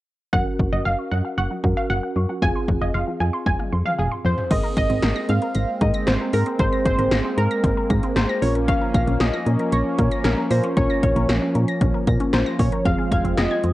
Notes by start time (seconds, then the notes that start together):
0.33 F#1 F#3 C#4 F#4 A#4 F#5, kick
0.46 F#5
0.59 F#1 C#6, kick
0.73 F#1 F#3 D#5
0.85 F#1 F5 F#5
0.99 C#6
1.12 F#2 F#3 F#5
1.25 F#5
1.38 F#1 F#5 C#6
1.51 F#3
1.64 F#2 C#4 F#4 A#4 F#5, kick
1.77 F5
1.90 F#1 F#3 F#5
2.03 F#5
2.16 F#2 C#6
2.29 F#3
2.42 F1 C4 F4 G#4 F5 G#5, kick
2.55 C6
2.68 F1 F3, kick
2.81 F1 D#5 F5
2.94 F1 F5 C6
3.07 F3
3.20 F2 F5 G#5
3.33 C6
3.46 F1 F3 G#5, kick, high tom
3.59 F5, high tom
3.72 F2 C6
3.85 F3 F5, mid tom
3.98 F1 G#4 F5, mid tom
4.11 C6
4.25 F2 F3 C5, floor tom
4.38 floor tom
4.51 G#1 G#3 A#3 C4 G#4 A#4 D#5, kick, closed hi-hat, crash
4.64 A#4
4.77 G#1 D#5 A#6, kick, closed hi-hat
4.90 G#1 C4, closed hi-hat
5.03 G#1 A#4, snare, closed hi-hat
5.16 A#6
5.29 G#2 C4 F5, closed hi-hat
5.42 A#4, closed hi-hat
5.55 G#1 A#6, closed hi-hat
5.81 G#2 A#4 D#5, kick, closed hi-hat
5.94 A#6, closed hi-hat
6.07 G#1 C4 C5, snare, closed hi-hat
6.21 A#4
6.33 G#2 A#4 A#6, open hi-hat
6.46 C4, closed hi-hat
6.59 G#1 C4 G#4 A#4 C5, kick, closed hi-hat
6.72 A#6
6.85 G#1 C4 C5, kick, closed hi-hat
6.99 G#1 A#4, closed hi-hat
7.11 G#1 A#6, snare, closed hi-hat
7.25 C4
7.38 G#2 A#4, closed hi-hat
7.51 A#6, closed hi-hat
7.64 G#1 C4, kick, closed hi-hat
7.77 A#4
7.90 G#2 A#6, kick, closed hi-hat
8.03 C4, closed hi-hat
8.16 G#1 C4 G#4 A#4 C5, snare, closed hi-hat
8.29 A#6
8.42 A#1 F3 C#4 F4 A#4 C#5, open hi-hat
8.55 A#4, closed hi-hat
8.68 C#4 F5, kick, closed hi-hat
8.81 A#4
8.94 A#1 F5 A#6, kick, closed hi-hat
9.07 A#1 C#4, closed hi-hat
9.20 A#1 A#4 D#5, snare, closed hi-hat
9.34 A#6
9.46 A#2 C#4, closed hi-hat
9.59 A#4, closed hi-hat
9.72 A#1 C#5 A#6, closed hi-hat
9.99 A#2 A#4, kick, closed hi-hat
10.11 A#6, closed hi-hat
10.24 A#1 C#4 A#4, snare, closed hi-hat
10.38 A#4
10.51 A#2 C#4 F4 A#4 C5 A#6, open hi-hat
10.64 C#4, closed hi-hat
10.77 A#1 A#4 C#5, kick, closed hi-hat
10.90 A#6
11.03 A#1 C#4 C#5, kick, closed hi-hat
11.16 A#1 A#4, closed hi-hat
11.29 A#1 A#6, snare, closed hi-hat
11.42 C#4
11.55 A#2 A#4, closed hi-hat
11.68 A#6, closed hi-hat
11.81 A#1 C#4, kick, closed hi-hat
11.94 A#4
12.07 A#2 A#6, kick, closed hi-hat
12.20 C#4, closed hi-hat
12.33 A#1 A#4 C5, snare, closed hi-hat
12.46 A#6
12.59 A#2 C#4 C#5, kick, open hi-hat
12.72 A#4, closed hi-hat
12.86 F1 G#3 C4 F4 G#4 F5, kick, closed hi-hat
12.99 G#4
13.12 F1 F5 G#6, kick, closed hi-hat
13.25 F1 C4, closed hi-hat
13.38 F1 G#4 D#5, snare, closed hi-hat
13.51 G#6
13.64 F2 C4, closed hi-hat